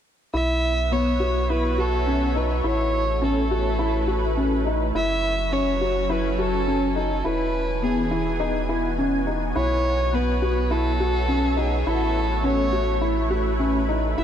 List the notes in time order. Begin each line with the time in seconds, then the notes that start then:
0.32 B1 B3 E4 E5
0.80 C#5
0.92 B3 C#5
0.99 F#4
1.20 F#4
1.37 E5
1.50 E4 B4
1.78 F#4 A4
2.07 C#4
2.35 D#4 B4
2.64 A1 A3 E4 C#5
3.07 E4
3.22 C#4 A4
3.37 B4
3.51 F#4
3.79 E4
4.08 F#4
4.37 C#4
4.66 D#4
4.95 F#1 F#3 E4 E5
5.52 C#4 C#5
5.80 F#4 G#5
6.00 A4
6.10 E4 B4
6.31 B4
6.39 F#4 A4
6.67 C#4
6.96 D#4 A4
7.25 E1 E3 E4 B4
7.77 B3
7.82 B3 G#4
8.04 F#4
8.11 E4
8.40 D#4
8.69 E4
8.98 C#4
9.27 D#4
9.56 B1 E4 C#5
10.13 B3 B4
10.41 F#4 C#5
10.61 E5
10.71 E4 A4
11.00 F#4
11.28 C#4
11.57 D#4 G#4
11.87 A1 A3 E4 A4
12.43 C#4 C#5
12.48 E4
12.73 F#4
12.91 B4
13.01 E4
13.31 F#4
13.59 C#4
13.89 D#4
14.17 F#1 F#3 E4 E5